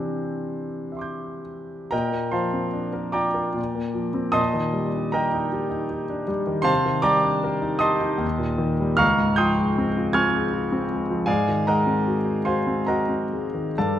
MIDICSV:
0, 0, Header, 1, 2, 480
1, 0, Start_track
1, 0, Tempo, 996678
1, 925, Time_signature, 3, 2, 24, 8
1, 925, Tempo, 829876
1, 1885, Tempo, 795756
1, 2845, Tempo, 769231
1, 5245, Tempo, 755668
1, 7165, Tempo, 819672
1, 7645, Tempo, 906344
1, 8245, End_track
2, 0, Start_track
2, 0, Title_t, "Grand piano"
2, 0, Program_c, 0, 0
2, 0, Control_c, 0, 64, 127
2, 0, Note_on_c, 0, 48, 43
2, 0, Note_on_c, 0, 52, 36
2, 0, Note_on_c, 0, 60, 35
2, 0, Note_on_c, 0, 62, 33
2, 0, Note_on_c, 0, 67, 33
2, 0, Note_on_c, 0, 72, 56
2, 0, Note_on_c, 0, 84, 66
2, 443, Note_on_c, 0, 76, 27
2, 458, Note_off_c, 0, 84, 0
2, 465, Note_on_c, 0, 84, 25
2, 475, Note_on_c, 0, 86, 26
2, 489, Note_on_c, 0, 91, 29
2, 674, Note_off_c, 0, 72, 0
2, 903, Note_off_c, 0, 76, 0
2, 904, Note_off_c, 0, 52, 0
2, 904, Note_off_c, 0, 60, 0
2, 906, Note_off_c, 0, 62, 0
2, 908, Note_off_c, 0, 67, 0
2, 914, Note_off_c, 0, 84, 0
2, 918, Note_on_c, 0, 82, 81
2, 919, Note_off_c, 0, 86, 0
2, 925, Note_off_c, 0, 91, 0
2, 925, Note_on_c, 0, 79, 60
2, 926, Note_on_c, 0, 46, 53
2, 926, Note_on_c, 0, 70, 53
2, 928, Note_on_c, 0, 75, 54
2, 937, Control_c, 0, 64, 0
2, 938, Note_off_c, 0, 48, 0
2, 1033, Control_c, 0, 64, 127
2, 1040, Note_on_c, 0, 58, 31
2, 1153, Note_on_c, 0, 84, 68
2, 1154, Note_off_c, 0, 70, 0
2, 1154, Note_off_c, 0, 79, 0
2, 1155, Note_off_c, 0, 75, 0
2, 1159, Note_on_c, 0, 72, 48
2, 1161, Note_on_c, 0, 53, 36
2, 1161, Note_on_c, 0, 81, 48
2, 1162, Note_on_c, 0, 77, 48
2, 1167, Note_off_c, 0, 82, 0
2, 1240, Note_off_c, 0, 58, 0
2, 1279, Note_on_c, 0, 60, 35
2, 1360, Note_off_c, 0, 53, 0
2, 1395, Note_on_c, 0, 62, 41
2, 1477, Note_off_c, 0, 60, 0
2, 1510, Note_on_c, 0, 70, 40
2, 1593, Note_off_c, 0, 62, 0
2, 1620, Note_off_c, 0, 72, 0
2, 1621, Note_off_c, 0, 77, 0
2, 1621, Note_off_c, 0, 81, 0
2, 1621, Note_on_c, 0, 86, 69
2, 1625, Note_on_c, 0, 82, 58
2, 1626, Note_on_c, 0, 79, 55
2, 1630, Note_on_c, 0, 74, 55
2, 1632, Note_on_c, 0, 65, 42
2, 1640, Note_off_c, 0, 84, 0
2, 1709, Note_off_c, 0, 70, 0
2, 1749, Note_on_c, 0, 70, 38
2, 1829, Note_off_c, 0, 65, 0
2, 1853, Note_off_c, 0, 46, 0
2, 1862, Note_on_c, 0, 46, 45
2, 1876, Note_off_c, 0, 70, 0
2, 1897, Control_c, 0, 64, 0
2, 1986, Note_on_c, 0, 58, 41
2, 2006, Control_c, 0, 64, 127
2, 2102, Note_on_c, 0, 53, 41
2, 2192, Note_off_c, 0, 58, 0
2, 2221, Note_on_c, 0, 60, 43
2, 2309, Note_off_c, 0, 53, 0
2, 2330, Note_off_c, 0, 46, 0
2, 2330, Note_on_c, 0, 87, 92
2, 2332, Note_on_c, 0, 81, 67
2, 2334, Note_off_c, 0, 82, 0
2, 2335, Note_off_c, 0, 79, 0
2, 2337, Note_off_c, 0, 74, 0
2, 2337, Note_on_c, 0, 75, 69
2, 2339, Note_on_c, 0, 46, 57
2, 2340, Note_on_c, 0, 84, 69
2, 2356, Note_off_c, 0, 60, 0
2, 2356, Note_off_c, 0, 86, 0
2, 2381, Control_c, 0, 64, 0
2, 2462, Note_on_c, 0, 51, 36
2, 2485, Control_c, 0, 64, 127
2, 2581, Note_on_c, 0, 55, 43
2, 2666, Note_off_c, 0, 51, 0
2, 2703, Note_on_c, 0, 62, 37
2, 2784, Note_off_c, 0, 55, 0
2, 2802, Note_off_c, 0, 81, 0
2, 2804, Note_off_c, 0, 75, 0
2, 2806, Note_off_c, 0, 84, 0
2, 2814, Note_on_c, 0, 82, 75
2, 2823, Note_on_c, 0, 70, 59
2, 2825, Note_off_c, 0, 87, 0
2, 2825, Note_on_c, 0, 75, 56
2, 2828, Note_on_c, 0, 79, 61
2, 2830, Note_on_c, 0, 67, 44
2, 2906, Note_off_c, 0, 62, 0
2, 2949, Note_on_c, 0, 63, 43
2, 3032, Note_off_c, 0, 67, 0
2, 3065, Note_on_c, 0, 67, 47
2, 3150, Note_off_c, 0, 63, 0
2, 3177, Note_on_c, 0, 63, 40
2, 3266, Note_off_c, 0, 67, 0
2, 3301, Note_on_c, 0, 67, 46
2, 3379, Note_off_c, 0, 63, 0
2, 3422, Note_on_c, 0, 62, 45
2, 3499, Note_off_c, 0, 67, 0
2, 3521, Note_off_c, 0, 70, 0
2, 3522, Note_off_c, 0, 75, 0
2, 3523, Note_off_c, 0, 79, 0
2, 3534, Note_on_c, 0, 55, 51
2, 3541, Note_off_c, 0, 82, 0
2, 3619, Note_off_c, 0, 62, 0
2, 3655, Note_on_c, 0, 51, 48
2, 3736, Note_off_c, 0, 55, 0
2, 3748, Note_on_c, 0, 84, 95
2, 3755, Note_off_c, 0, 46, 0
2, 3755, Note_on_c, 0, 72, 71
2, 3759, Note_on_c, 0, 48, 58
2, 3762, Note_on_c, 0, 77, 76
2, 3765, Note_on_c, 0, 81, 79
2, 3786, Note_off_c, 0, 51, 0
2, 3807, Control_c, 0, 64, 0
2, 3886, Control_c, 0, 64, 127
2, 3896, Note_on_c, 0, 51, 40
2, 3999, Note_on_c, 0, 86, 100
2, 4000, Note_off_c, 0, 72, 0
2, 4003, Note_off_c, 0, 77, 0
2, 4003, Note_on_c, 0, 82, 75
2, 4005, Note_off_c, 0, 81, 0
2, 4006, Note_on_c, 0, 79, 69
2, 4008, Note_on_c, 0, 55, 48
2, 4008, Note_on_c, 0, 74, 72
2, 4015, Note_off_c, 0, 84, 0
2, 4100, Note_off_c, 0, 51, 0
2, 4133, Note_on_c, 0, 62, 44
2, 4215, Note_off_c, 0, 55, 0
2, 4260, Note_on_c, 0, 70, 54
2, 4336, Note_off_c, 0, 62, 0
2, 4369, Note_on_c, 0, 63, 45
2, 4460, Note_off_c, 0, 70, 0
2, 4474, Note_off_c, 0, 82, 0
2, 4476, Note_off_c, 0, 74, 0
2, 4476, Note_off_c, 0, 79, 0
2, 4477, Note_on_c, 0, 87, 96
2, 4485, Note_on_c, 0, 75, 70
2, 4488, Note_on_c, 0, 84, 73
2, 4490, Note_on_c, 0, 81, 66
2, 4497, Note_off_c, 0, 86, 0
2, 4497, Note_on_c, 0, 67, 53
2, 4575, Note_off_c, 0, 63, 0
2, 4611, Note_on_c, 0, 63, 51
2, 4701, Note_off_c, 0, 67, 0
2, 4716, Note_off_c, 0, 48, 0
2, 4721, Note_on_c, 0, 39, 57
2, 4747, Note_off_c, 0, 63, 0
2, 4770, Control_c, 0, 64, 0
2, 4849, Note_on_c, 0, 46, 52
2, 4867, Control_c, 0, 64, 127
2, 4973, Note_on_c, 0, 51, 48
2, 5060, Note_off_c, 0, 46, 0
2, 5112, Note_on_c, 0, 55, 47
2, 5182, Note_off_c, 0, 51, 0
2, 5204, Note_off_c, 0, 75, 0
2, 5205, Note_off_c, 0, 84, 0
2, 5206, Note_off_c, 0, 81, 0
2, 5210, Note_off_c, 0, 39, 0
2, 5213, Note_on_c, 0, 89, 107
2, 5220, Note_on_c, 0, 37, 64
2, 5220, Note_on_c, 0, 77, 84
2, 5225, Note_off_c, 0, 87, 0
2, 5225, Note_on_c, 0, 82, 77
2, 5226, Note_on_c, 0, 85, 78
2, 5238, Note_off_c, 0, 55, 0
2, 5254, Control_c, 0, 64, 0
2, 5334, Control_c, 0, 64, 127
2, 5349, Note_on_c, 0, 44, 42
2, 5454, Note_off_c, 0, 77, 0
2, 5457, Note_off_c, 0, 82, 0
2, 5457, Note_off_c, 0, 85, 0
2, 5463, Note_on_c, 0, 91, 90
2, 5468, Note_off_c, 0, 89, 0
2, 5472, Note_on_c, 0, 87, 71
2, 5476, Note_on_c, 0, 79, 72
2, 5476, Note_on_c, 0, 84, 76
2, 5477, Note_on_c, 0, 53, 47
2, 5547, Note_off_c, 0, 44, 0
2, 5607, Note_on_c, 0, 56, 46
2, 5669, Note_off_c, 0, 53, 0
2, 5730, Note_on_c, 0, 60, 52
2, 5793, Note_off_c, 0, 56, 0
2, 5851, Note_on_c, 0, 65, 46
2, 5915, Note_off_c, 0, 60, 0
2, 5927, Note_off_c, 0, 87, 0
2, 5929, Note_off_c, 0, 79, 0
2, 5929, Note_off_c, 0, 84, 0
2, 5948, Note_off_c, 0, 91, 0
2, 5953, Note_on_c, 0, 92, 92
2, 5959, Note_on_c, 0, 89, 78
2, 5961, Note_on_c, 0, 80, 67
2, 5963, Note_on_c, 0, 60, 53
2, 5964, Note_on_c, 0, 85, 72
2, 6038, Note_off_c, 0, 65, 0
2, 6086, Note_on_c, 0, 68, 47
2, 6156, Note_off_c, 0, 60, 0
2, 6207, Note_on_c, 0, 65, 45
2, 6279, Note_off_c, 0, 68, 0
2, 6328, Note_on_c, 0, 60, 50
2, 6399, Note_off_c, 0, 65, 0
2, 6462, Note_on_c, 0, 56, 45
2, 6517, Note_off_c, 0, 60, 0
2, 6569, Note_on_c, 0, 53, 47
2, 6642, Note_off_c, 0, 56, 0
2, 6643, Note_off_c, 0, 37, 0
2, 6656, Note_off_c, 0, 80, 0
2, 6656, Note_off_c, 0, 89, 0
2, 6658, Note_off_c, 0, 85, 0
2, 6668, Note_on_c, 0, 80, 89
2, 6673, Note_on_c, 0, 77, 61
2, 6675, Note_on_c, 0, 68, 71
2, 6678, Note_off_c, 0, 92, 0
2, 6679, Note_on_c, 0, 74, 67
2, 6683, Note_on_c, 0, 44, 61
2, 6684, Note_off_c, 0, 53, 0
2, 6690, Control_c, 0, 64, 0
2, 6787, Control_c, 0, 64, 127
2, 6813, Note_on_c, 0, 51, 37
2, 6899, Note_off_c, 0, 77, 0
2, 6900, Note_off_c, 0, 68, 0
2, 6902, Note_off_c, 0, 74, 0
2, 6914, Note_off_c, 0, 80, 0
2, 6930, Note_on_c, 0, 82, 80
2, 6933, Note_on_c, 0, 78, 54
2, 6934, Note_on_c, 0, 75, 66
2, 6936, Note_on_c, 0, 56, 42
2, 6937, Note_on_c, 0, 70, 62
2, 6999, Note_off_c, 0, 51, 0
2, 7054, Note_on_c, 0, 60, 41
2, 7124, Note_off_c, 0, 56, 0
2, 7181, Note_on_c, 0, 66, 47
2, 7241, Note_off_c, 0, 60, 0
2, 7289, Note_on_c, 0, 63, 40
2, 7361, Note_off_c, 0, 66, 0
2, 7384, Note_off_c, 0, 78, 0
2, 7385, Note_off_c, 0, 75, 0
2, 7386, Note_off_c, 0, 70, 0
2, 7405, Note_on_c, 0, 84, 72
2, 7406, Note_off_c, 0, 82, 0
2, 7408, Note_on_c, 0, 72, 53
2, 7410, Note_on_c, 0, 77, 55
2, 7411, Note_on_c, 0, 80, 61
2, 7414, Note_on_c, 0, 66, 41
2, 7477, Note_off_c, 0, 63, 0
2, 7534, Note_on_c, 0, 60, 40
2, 7603, Note_off_c, 0, 66, 0
2, 7633, Note_off_c, 0, 72, 0
2, 7634, Note_off_c, 0, 77, 0
2, 7634, Note_off_c, 0, 80, 0
2, 7647, Note_on_c, 0, 82, 68
2, 7648, Note_off_c, 0, 84, 0
2, 7655, Note_on_c, 0, 75, 51
2, 7656, Note_on_c, 0, 78, 46
2, 7657, Note_on_c, 0, 70, 54
2, 7661, Note_on_c, 0, 66, 41
2, 7719, Note_off_c, 0, 60, 0
2, 7767, Note_on_c, 0, 60, 40
2, 7837, Note_off_c, 0, 66, 0
2, 7894, Note_on_c, 0, 56, 39
2, 7951, Note_off_c, 0, 60, 0
2, 8007, Note_on_c, 0, 51, 36
2, 8078, Note_off_c, 0, 56, 0
2, 8100, Note_off_c, 0, 44, 0
2, 8103, Note_off_c, 0, 75, 0
2, 8104, Note_off_c, 0, 70, 0
2, 8104, Note_off_c, 0, 78, 0
2, 8120, Note_off_c, 0, 82, 0
2, 8126, Note_off_c, 0, 51, 0
2, 8130, Control_c, 0, 64, 0
2, 8132, Note_on_c, 0, 81, 70
2, 8133, Note_on_c, 0, 74, 56
2, 8133, Note_on_c, 0, 77, 48
2, 8134, Note_on_c, 0, 69, 56
2, 8136, Note_on_c, 0, 43, 51
2, 8234, Control_c, 0, 64, 127
2, 8245, Note_off_c, 0, 43, 0
2, 8245, Note_off_c, 0, 69, 0
2, 8245, Note_off_c, 0, 74, 0
2, 8245, Note_off_c, 0, 77, 0
2, 8245, Note_off_c, 0, 81, 0
2, 8245, End_track
0, 0, End_of_file